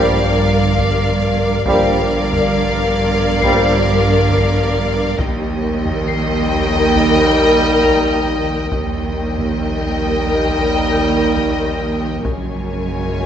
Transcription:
Already playing: double bass section G1, sub bass A#1, cello section G2, trombone section F3 G3, french horn section A#3 D4, viola section A#4, violin section D5 F5
0.78 taiko
1.66 double bass section G1, sub bass A#1, cello section G2, trombone section F3 G3, french horn section A#3 D4, viola section A#4, violin section D5 F5, taiko
2.33 taiko low
3.42 trombone section F3 G3, french horn section A#3 D4, harp C7, taiko
4.31 taiko
5.19 sub bass A#1, cello section D#2, double bass section D#2, trombone section D#3 G3, french horn section A#3 D#4, viola section A#4, violin section D#5 G5, taiko
5.85 taiko low
6.08 harp C7
6.95 taiko
7.83 harp A#5 A#6, taiko
8.70 sub bass A#1, double bass section D#2, cello section D#2, trombone section D#3 G3, french horn section A#3 D#4, viola section A#4, violin section D#5 G5, taiko
9.38 taiko low
10.48 taiko
10.92 harp G6
11.37 taiko
12.24 double bass section F#1, sub bass A#1, cello section F#2, trombone section C#3 G#3, french horn section A#3 F#4, viola section A#4, violin section C#5 G#5, taiko

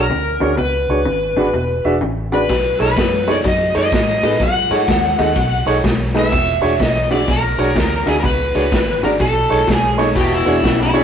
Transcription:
Already playing: electric slide guitar A#4
0.10 fingered electric bass D2, clean electric guitar E2 C#3
0.40 fingered electric bass D2, clean electric guitar E2 C#3, upright piano D4 F#4 G#4 C#5
0.57 fingered electric bass C#2, clean electric guitar E2 B2, electric slide guitar B4
0.89 fingered electric bass C#2, upright piano D4 F#4 G#4 C#5
1.05 fingered electric bass G#1, clean electric guitar E2 C#3
1.37 fingered electric bass G#1, clean electric guitar E2 C#3, upright piano D4 F#4 G#4 B4
1.53 fingered electric bass E1, clean electric guitar E2 B2
1.85 fingered electric bass E1, upright piano D4 F#4 G#4 E5
2.01 fingered electric bass A1, clean electric guitar E2 C#3
2.32 clean electric guitar E2 C#3, upright piano D4 F#4 G#4 D5, electric slide guitar B4
2.49 fingered electric bass B1, clean electric guitar B2 F#3, kick, snare, ride
2.79 fingered electric bass B1, upright piano D#4 G#4 A4 C#5, electric slide guitar B4, snare, ride
2.96 fingered electric bass F#2, clean electric guitar B2 G#3, kick, snare, ride
3.27 clean electric guitar B2 G#3, upright piano D#4 G#4 A4 C#5, electric slide guitar D5, snare, ride
3.44 fingered electric bass F#2, clean electric guitar B2 F#3, electric slide guitar D#5, kick, ride
3.75 fingered electric bass F#2, upright piano D#4 G#4 A4 C#5, electric slide guitar D#5, snare, ride
3.92 fingered electric bass A2, clean electric guitar B2 G#3, kick, snare, ride
4.23 fingered electric bass A2, clean electric guitar B2 G#3, upright piano D#4 G#4 A4 B4, snare, ride
4.40 fingered electric bass G#2, clean electric guitar B2 F#3, electric slide guitar F#5, kick, ride
4.70 fingered electric bass G#2, upright piano D#4 G#4 A4 C#5, snare, ride
4.88 fingered electric bass D#2, clean electric guitar B2 G#3, kick, snare, ride
5.19 fingered electric bass D#2, clean electric guitar B2 G#3, upright piano D#4 G#4 A4 D#5, snare, ride
5.36 fingered electric bass B1, clean electric guitar B2 F#3, kick, ride
5.66 fingered electric bass B1, upright piano D#4 G#4 A4 C#5, snare, ride
5.84 fingered electric bass B1, clean electric guitar B2 G#3, kick, snare, ride
6.14 clean electric guitar B2 G#3, upright piano D#4 G#4 A4 B4, snare, ride
6.19 electric slide guitar E5
6.32 fingered electric bass E1, clean electric guitar E2 B2, kick, snare, ride
6.61 fingered electric bass E1, upright piano D4 F#4 G#4 C#5, snare, ride
6.79 fingered electric bass B1, clean electric guitar E2 C#3, kick, snare, ride
6.84 electric slide guitar D#5
7.11 clean electric guitar E2 C#3, upright piano D4 F#4 G#4 E5, electric slide guitar D5, snare, ride
7.28 fingered electric bass B1, clean electric guitar E2 B2, electric slide guitar A#4, kick, snare, ride
7.58 fingered electric bass B1, upright piano D4 F#4 G#4 C#5, snare, ride
7.76 clean electric guitar E2 C#3, kick, snare, ride
8.06 fingered electric bass D2, clean electric guitar E2 C#3, upright piano D4 F#4 G#4 E5, electric slide guitar G#4, snare, ride
8.20 clean electric guitar E2, electric slide guitar A#4
8.24 fingered electric bass C#2, clean electric guitar B2, electric slide guitar B4, kick, ride
8.55 fingered electric bass C#2, upright piano D4 F#4 G#4 C#5, snare, ride
8.72 fingered electric bass G#1, clean electric guitar E2 C#3, kick, snare, ride
9.03 fingered electric bass G#1, clean electric guitar E2 C#3, upright piano D4 F#4 G#4 D5, electric slide guitar A#4, snare, ride
9.20 fingered electric bass B1, clean electric guitar B2 F#3, electric slide guitar A4, kick, ride
9.50 fingered electric bass B1, upright piano D#4 G#4 A4 C#5, snare, ride
9.67 fingered electric bass B1, clean electric guitar B2 G#3, kick, snare, ride
9.73 electric slide guitar G#4
9.98 clean electric guitar B2 G#3, upright piano D#4 G#4 A4 C#5, snare, ride
10.15 fingered electric bass E1, clean electric guitar E2 B2, electric slide guitar G4, kick, snare, crash
10.34 electric slide guitar E4
10.46 fingered electric bass E1, upright piano D4 F#4 G#4 C#5, snare, closed hi-hat
10.63 fingered electric bass B1, clean electric guitar E2 C#3, kick, snare, closed hi-hat
10.83 electric slide guitar E4
10.94 clean electric guitar E2 C#3, upright piano D4 F#4 G#4 C#5, snare, closed hi-hat

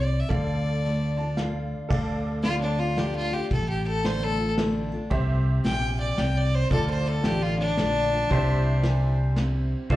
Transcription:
Already playing: fingered electric bass C2, steel-string acoustic guitar C3, honky-tonk piano G4 C5 E5, fiddle D5
0.20 fiddle E5
0.29 fingered electric bass D2, steel-string acoustic guitar D3, honky-tonk piano A4 D5 F5, fiddle D5, kick, closed hi-hat
0.85 steel-string acoustic guitar D3 A3 D4 F4, closed hi-hat
1.17 steel-string acoustic guitar D4 F4, honky-tonk piano A5
1.37 steel-string acoustic guitar D3 A3 D4 F4, honky-tonk piano F5, snare, closed hi-hat
1.89 fingered electric bass D2, steel-string acoustic guitar D3, honky-tonk piano A4 D5 F5, kick, crash
2.43 steel-string acoustic guitar D3 A3 D4, fiddle F4, snare, ride
2.47 steel-string acoustic guitar F4
2.61 fiddle D4
2.79 steel-string acoustic guitar D4 F4, fiddle F4
2.97 steel-string acoustic guitar D3 A3 D4 F4, fiddle G4, snare, ride
3.16 fiddle F4
3.31 steel-string acoustic guitar D4 F4, fiddle G4
3.51 fingered electric bass A1, steel-string acoustic guitar A2, fiddle A4, kick, ride
3.69 fiddle G4
3.85 fiddle A4, ride
4.03 steel-string acoustic guitar D3 A3 D4 F4, fiddle C5, snare, ride
4.23 fiddle A4
4.38 steel-string acoustic guitar D4 F4
4.58 steel-string acoustic guitar D3 A3 D4 F4, snare, ride
4.92 steel-string acoustic guitar D4 F4
5.10 fingered electric bass C2, steel-string acoustic guitar C3, honky-tonk piano G4 C5 E5, kick, ride
5.65 fingered electric bass A#1, steel-string acoustic guitar A#2, fiddle G5, snare, ride
6.00 fiddle D5
6.18 fingered electric bass C2, steel-string acoustic guitar C3, fiddle G5, snare, ride
6.37 fiddle D5
6.55 fiddle C5
6.71 fingered electric bass D2, steel-string acoustic guitar D3, honky-tonk piano F4 A4 D5, fiddle A4, kick, ride
6.90 fiddle C5
7.05 fiddle A4, ride
7.24 fingered electric bass A1, steel-string acoustic guitar D3 A3 D4 F4, fiddle G4, snare, ride
7.42 fiddle F4
7.59 fiddle D4
7.77 fingered electric bass A#1, steel-string acoustic guitar D3 A3 D4 F4, snare, ride
8.13 steel-string acoustic guitar D4 F4
8.30 fingered electric bass C2, steel-string acoustic guitar C3, honky-tonk piano E4 G4 C5, pedal steel guitar C5 E5, kick, ride
8.83 steel-string acoustic guitar A#2, snare, ride
9.36 steel-string acoustic guitar C3, snare, ride
9.89 fingered electric bass D2, steel-string acoustic guitar D3, honky-tonk piano F4 A4 D5, pedal steel guitar C5 E5, kick, ride

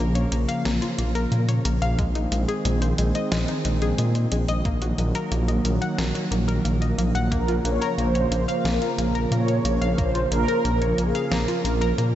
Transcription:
Already playing: analog synth pad C#3 F3 A#3
0.00 detuned saw bass A#1, synth arpeggio sound A#3
0.15 synth arpeggio sound C#5, closed hi-hat
0.32 detuned saw bass A#1, synth arpeggio sound A#3, closed hi-hat
0.49 synth arpeggio sound F5, closed hi-hat
0.65 detuned saw bass A#1, synth arpeggio sound A#3, snare, closed hi-hat
0.82 synth arpeggio sound F4, closed hi-hat
0.98 detuned saw bass A#1, synth arpeggio sound A#3, closed hi-hat
1.15 synth arpeggio sound A#4, closed hi-hat
1.32 detuned saw bass A#2, synth arpeggio sound A#3, closed hi-hat
1.49 synth arpeggio sound C#5, closed hi-hat
1.65 detuned saw bass A#1, synth arpeggio sound A#3, closed hi-hat
1.82 detuned saw bass A#1, synth arpeggio sound F5, closed hi-hat
1.98 detuned saw bass A#1, analog synth pad D#3 G#3 C4, synth arpeggio sound G#3, kick, closed hi-hat
2.15 synth arpeggio sound D#4, closed hi-hat
2.32 detuned saw bass A#1, synth arpeggio sound G#3, closed hi-hat
2.48 synth arpeggio sound G#4, closed hi-hat
2.65 detuned saw bass A#1, synth arpeggio sound G#3, closed hi-hat
2.82 synth arpeggio sound C5, closed hi-hat
2.98 detuned saw bass A#1, synth arpeggio sound G#3, closed hi-hat
3.15 synth arpeggio sound D#5, closed hi-hat
3.32 detuned saw bass A#1, synth arpeggio sound G#3, snare, closed hi-hat
3.48 synth arpeggio sound D#4, closed hi-hat
3.65 detuned saw bass A#1, synth arpeggio sound G#3, closed hi-hat
3.82 synth arpeggio sound G#4, closed hi-hat
3.98 detuned saw bass A#2, synth arpeggio sound G#3, closed hi-hat
4.15 synth arpeggio sound C5, closed hi-hat
4.32 detuned saw bass A#1, synth arpeggio sound G#3, closed hi-hat
4.48 detuned saw bass A#1, synth arpeggio sound D#5, closed hi-hat
4.65 detuned saw bass A#1, analog synth pad D#3 F#3 A#3, synth arpeggio sound A#3, kick, closed hi-hat
4.82 synth arpeggio sound F#4, closed hi-hat
4.98 detuned saw bass A#1, synth arpeggio sound A#3, closed hi-hat
5.15 synth arpeggio sound A#4, closed hi-hat
5.31 detuned saw bass A#1, synth arpeggio sound A#3, closed hi-hat
5.48 synth arpeggio sound D#5, closed hi-hat
5.65 detuned saw bass A#1, synth arpeggio sound A#3, closed hi-hat
5.82 synth arpeggio sound F#5, closed hi-hat
5.98 detuned saw bass A#1, synth arpeggio sound A#3, snare, closed hi-hat
6.15 synth arpeggio sound F#4, closed hi-hat
6.31 detuned saw bass A#1, synth arpeggio sound A#3, closed hi-hat
6.48 synth arpeggio sound A#4, closed hi-hat
6.65 detuned saw bass A#1, synth arpeggio sound A#3, closed hi-hat
6.82 synth arpeggio sound D#5, closed hi-hat
6.98 detuned saw bass A#1, synth arpeggio sound A#3, closed hi-hat
7.15 detuned saw bass A#1, synth arpeggio sound F#5, closed hi-hat
7.32 detuned saw bass A#1, analog synth pad C#3 F3, synth arpeggio sound A#3, analog polysynth A#4, kick, closed hi-hat
7.48 synth arpeggio sound F4, closed hi-hat
7.65 detuned saw bass A#1, synth arpeggio sound A#3, analog polysynth C#5, closed hi-hat
7.82 synth arpeggio sound A#4, closed hi-hat
7.98 detuned saw bass A#1, synth arpeggio sound A#3, analog polysynth C5, closed hi-hat
8.15 synth arpeggio sound C#5, closed hi-hat
8.31 detuned saw bass A#1, synth arpeggio sound A#3, closed hi-hat
8.48 synth arpeggio sound F5, closed hi-hat
8.65 detuned saw bass A#1, synth arpeggio sound A#3, analog polysynth A#4, snare, closed hi-hat
8.82 synth arpeggio sound F4, closed hi-hat
8.98 detuned saw bass A#1, synth arpeggio sound A#3, closed hi-hat
9.15 synth arpeggio sound A#4, closed hi-hat
9.31 detuned saw bass A#2, synth arpeggio sound A#3, analog polysynth C#5, closed hi-hat
9.48 synth arpeggio sound C#5, closed hi-hat
9.65 detuned saw bass A#1, synth arpeggio sound A#3, closed hi-hat
9.81 detuned saw bass A#1, synth arpeggio sound F5, closed hi-hat
9.98 detuned saw bass A#1, synth arpeggio sound A#3, analog polysynth C5, kick, closed hi-hat
10.15 synth arpeggio sound F4, closed hi-hat
10.31 detuned saw bass A#1, synth arpeggio sound A#3, analog polysynth A#4, closed hi-hat
10.48 synth arpeggio sound A#4, closed hi-hat
10.65 detuned saw bass A#1, synth arpeggio sound A#3, closed hi-hat
10.82 synth arpeggio sound C#5, closed hi-hat
10.98 detuned saw bass A#1, synth arpeggio sound A#3, analog polysynth G#4, closed hi-hat
11.15 synth arpeggio sound F5, closed hi-hat
11.31 detuned saw bass A#1, synth arpeggio sound A#3, analog polysynth A#4, snare, closed hi-hat
11.48 synth arpeggio sound F4, closed hi-hat
11.65 detuned saw bass A#1, synth arpeggio sound A#3, closed hi-hat
11.81 synth arpeggio sound A#4, closed hi-hat
11.98 detuned saw bass A#2, synth arpeggio sound A#3, closed hi-hat

